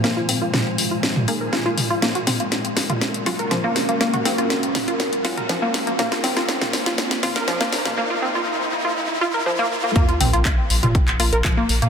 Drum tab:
HH |--o---o---o---o-|xxoxxxoxxxoxx-ox|xxoxxxoxxxoxx-ox|xxoxxxoxxxoxx-ox|
CP |----------------|----------------|----------------|----------------|
SD |o---o---o---o---|o-o-o-o-o-o-o-o-|o-o-o-o-o-o-o-o-|oooooooooooooooo|
T2 |----o----o----o-|--o----o----o---|-o----o----o----|o----o----o----o|
BD |----------------|----------------|----------------|----------------|

HH |----------------|xxoxx-oxxxoxx-ox|
CP |----------------|----x----x--x---|
SD |----------------|----------------|
T2 |----------------|--o----o----o---|
BD |----------------|o---o---o---o---|